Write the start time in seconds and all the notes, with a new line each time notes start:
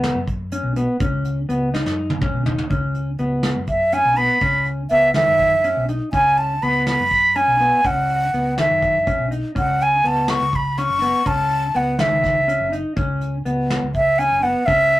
Already playing: C#2 B3
0.04 snare, closed hi-hat
0.15 F#2
0.28 kick, closed hi-hat
0.52 C#4, closed hi-hat
0.63 B1
0.76 B3, closed hi-hat
1.00 C#2 C#4, kick, closed hi-hat
1.25 closed hi-hat
1.49 C#2 B3, closed hi-hat
1.74 D#4, snare
1.86 F#2, snare
2.10 high tom
2.21 C#4, kick, mid tom
2.34 B1
2.46 D#4, floor tom
2.58 floor tom
2.70 C#2 C#4, kick, closed hi-hat
2.95 closed hi-hat
3.18 C#2 B3, closed hi-hat
3.43 snare, closed hi-hat
3.56 F#2
3.67 E5, kick, closed hi-hat
3.92 C#4 G#5, closed hi-hat
4.05 B1
4.17 B3 B5, closed hi-hat
4.41 C#2 C#4, kick, closed hi-hat
4.66 closed hi-hat
4.90 C#2 B3 E5, closed hi-hat
5.14 D#3 E5, snare, closed hi-hat
5.27 F#2
5.39 kick, closed hi-hat
5.64 C#4, closed hi-hat
5.77 B1
5.88 D#4, closed hi-hat
6.13 C#2 C#4 G#5, kick, closed hi-hat
6.37 A5, closed hi-hat
6.62 C#2 B3 B5, closed hi-hat
6.87 B5, snare, closed hi-hat
7.00 F#2
7.11 kick, closed hi-hat
7.36 C#4 G#5, closed hi-hat
7.48 B1
7.60 B3, closed hi-hat
7.84 C#2 C#4 F#5, kick, closed hi-hat
8.09 closed hi-hat
8.33 C#2 B3, closed hi-hat
8.58 D#3 E5, snare, closed hi-hat
8.70 F#2
8.82 kick, closed hi-hat
9.07 C#4, kick, closed hi-hat
9.19 B1
9.31 D#4, closed hi-hat
9.55 C#2 C#4 F#5, kick, closed hi-hat
9.80 G#5, closed hi-hat
10.04 C#2 B3 A5, closed hi-hat
10.28 C#6, snare, closed hi-hat
10.41 C#2
10.53 B5, kick, closed hi-hat
10.77 C#4 C#6, snare, closed hi-hat
10.90 F#1
11.02 B3, closed hi-hat
11.26 C#2 C#4 A5, kick, closed hi-hat
11.50 closed hi-hat
11.74 C#2 B3 F#5, closed hi-hat
11.99 D#3 E5, snare, closed hi-hat
12.11 C#2
12.24 kick, snare, closed hi-hat
12.48 C#4, closed hi-hat
12.60 F#1
12.72 D#4, closed hi-hat
12.96 C#2 C#4, kick, closed hi-hat
13.21 closed hi-hat
13.45 C#2 B3, closed hi-hat
13.70 snare, closed hi-hat
13.82 C#2
13.95 E5, kick, closed hi-hat
14.19 C#4 G#5, closed hi-hat
14.31 F#1
14.43 B3 F#5, closed hi-hat
14.66 C#2 C#4 E5, kick, closed hi-hat
14.92 closed hi-hat